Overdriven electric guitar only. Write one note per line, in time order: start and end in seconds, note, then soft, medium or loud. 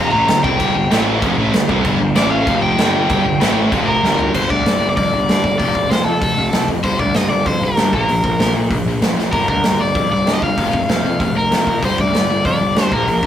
0.00 0.10 A#5 loud
0.12 0.43 A#5 loud
0.44 1.02 G5 loud
2.17 2.31 D5 medium
2.31 2.62 F5 loud
2.63 3.99 G5 loud
3.87 4.31 A#4 medium
4.35 4.49 C5 medium
4.50 4.86 D5 loud
4.89 4.93 D5 medium
4.97 5.57 D5 loud
5.59 5.91 D5 medium
5.90 6.04 C5 loud
6.04 6.67 A4 medium
6.84 7.00 C5 loud
7.00 7.15 D5 loud
7.15 7.29 D#5 loud
7.30 7.46 D5 medium
7.47 7.63 C5 loud
7.64 7.93 A#4 loud
7.95 8.52 A#4 medium
9.33 9.47 A#4 medium
9.49 9.81 A#4 medium
9.80 10.11 D5 medium
10.12 10.34 D5 medium
10.34 10.42 D#5 medium
10.43 11.39 F5 loud
11.38 11.84 A#4 medium
11.85 12.00 C5 medium
12.00 12.45 D5 loud
12.46 12.94 D5 loud
12.93 13.27 A#4 medium